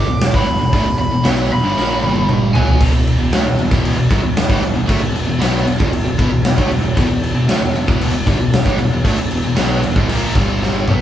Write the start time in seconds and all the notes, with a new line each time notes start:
Already playing: D6
0.08 E1 E2 B2
0.21 snare, open hi-hat
0.33 A1 A2 E3 B5, kick
0.46 E1 E2 B2
0.59 E1 E2 B2
0.71 D2 D3 A3, kick, open hi-hat
0.85 E1 E2 B2
0.98 E1 E2 B2 B5
1.11 E1 E2 B2
1.23 B1 B2 F#3 B3, snare, open hi-hat
1.50 E1 E2 B2 B5
1.64 G1 G2 D3
1.77 A#1 A#2 F3 A#3, snare
2.03 G1 G2 D3 G3, high tom
2.16 high tom
2.29 mid tom
2.54 B1 B2 F#3 B3 G#5, floor tom
2.68 floor tom
2.81 E1 E2 B2, kick, crash
2.94 E1 E2 B2
3.07 crash
3.19 E1 E2 B2
3.33 D2 D3 A3, snare, crash
3.45 E1 E2 B2
3.58 E1 E2 B2, crash
3.71 E1 E2 B2 E3, kick
3.85 crash
3.95 E1 E2 B2
4.11 G1 G2 D3, kick, crash
4.21 E1 E2 B2
4.37 snare, crash
4.48 A1 A2 E3, kick
4.61 E1 E2 B2, crash
4.74 E1 E2 B2
4.88 D2 D3 A3, kick, crash
5.01 E1 E2 B2
5.13 E1 E2 B2, crash
5.27 E1 E2 B2
5.40 B1 B2 F#3 B3, snare, crash
5.65 E1 E2 B2, crash
5.78 G1 G2 D3, kick
5.90 E1 E2, crash
5.94 B2
6.05 E1 E2 B2
6.18 E1 E2 B2, kick, crash
6.31 E1 E2 B2
6.43 E1 E2 B2, snare, crash
6.57 D2 D3 A3, kick
6.70 E1 E2 B2, snare, crash
6.83 E1 E2 B2
6.96 E1 E2 B2, kick, crash
7.09 E1 E2 B2
7.23 crash
7.35 E1 E2 B2
7.47 D2 D3 A3, snare, crash
7.61 E1 E2 B2
7.74 E1 E2 B2, crash
7.86 E1 E2 B2 E3, kick
8.01 crash
8.12 E1 E2 B2
8.26 G1 G2 D3, kick, crash
8.38 E1 E2 B2
8.53 snare, crash
8.64 A1 A2 E3, kick
8.78 E1 E2 B2, crash
8.91 E1 E2 B2
9.04 D2 D3 A3, kick, crash
9.18 E1 E2 B2
9.31 E1 E2 B2, crash
9.44 E1 E2 B2
9.56 B1 B2 F#3 B3, snare, crash
9.83 E1 E2 B2, crash
9.96 G1 G2 D3, kick
10.09 A#1 A#2 F3 A#3, crash
10.35 G1 G2 D3 G3, kick, crash
10.62 snare
10.87 B1 B2 F#3 B3, mid tom